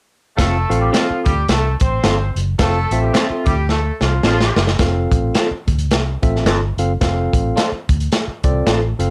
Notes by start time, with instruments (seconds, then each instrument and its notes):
0.37 fingered electric bass F1, horn section A3 A4, tine electric piano C4 F4 A4 F5, kick, snare, closed hi-hat
0.70 fingered electric bass A1, tine electric piano C4 F4 A4 F5, closed hi-hat
0.81 horn section G3 G4
0.92 horn section F3 F4, clean electric guitar C4 F4 A4 C5, snare, closed hi-hat
1.10 muted fingered electric bass stroke
1.24 fingered electric bass D2, horn section G3 G4, kick, closed hi-hat
1.48 fingered electric bass C2, horn section A3 A4, snare, closed hi-hat
1.80 fingered electric bass A1, horn section C4 C5, kick, closed hi-hat
2.03 fingered electric bass G1, clean electric guitar C4 F4 A4 C5, snare, closed hi-hat
2.36 fingered electric bass F#1, closed hi-hat
2.59 fingered electric bass F1, horn section A3 A4, tine electric piano C4 F4 A4 F5, kick, snare, closed hi-hat
2.91 fingered electric bass A1, tine electric piano C4 F4 A4 E5, closed hi-hat
3.02 horn section G3 G4
3.14 horn section F3 F4, clean electric guitar C4 F4 A4 C5, snare, closed hi-hat
3.30 muted fingered electric bass stroke
3.46 fingered electric bass D2, horn section G3 G4, kick, closed hi-hat
3.69 horn section A3 A4, snare
4.01 fingered electric bass C2, horn section F3 F4, snare
4.23 fingered electric bass A1, horn section F3 F4, clean electric guitar C4 F4 A4 C5, snare
4.41 snare
4.56 fingered electric bass F#1, snare
4.67 snare
4.79 fingered electric bass F1, tine electric piano C4 F4 A4 F5, kick, snare, closed hi-hat
5.11 fingered electric bass A1, kick, closed hi-hat
5.35 clean electric guitar C4 F4 A4 C5, snare, closed hi-hat
5.51 muted fingered electric bass stroke
5.67 fingered electric bass D2, kick, closed hi-hat
5.78 closed hi-hat
5.90 fingered electric bass C2, snare, closed hi-hat
6.22 fingered electric bass A1, tine electric piano C4 F4 A4 E5, kick, closed hi-hat
6.36 snare
6.45 fingered electric bass G1, clean electric guitar C4 F4 A4 C5, snare, closed hi-hat
6.77 fingered electric bass F#1, tine electric piano C4 F4 A4 F5, closed hi-hat
7.01 fingered electric bass F1, tine electric piano C4 F4 A4 F5, kick, snare, closed hi-hat
7.33 fingered electric bass A1, kick, closed hi-hat
7.56 clean electric guitar C4 F4 A4 C5, snare, closed hi-hat
7.72 muted fingered electric bass stroke
7.89 fingered electric bass D2, kick, closed hi-hat
8.00 closed hi-hat
8.12 snare, closed hi-hat
8.28 muted fingered electric bass stroke
8.43 fingered electric bass C2, tine electric piano C4 F4 A4 D5, kick, closed hi-hat
8.66 fingered electric bass A1, clean electric guitar C4 F4 A4 C5, snare, closed hi-hat
8.99 fingered electric bass F#1, tine electric piano C4 F4 A4 F5, closed hi-hat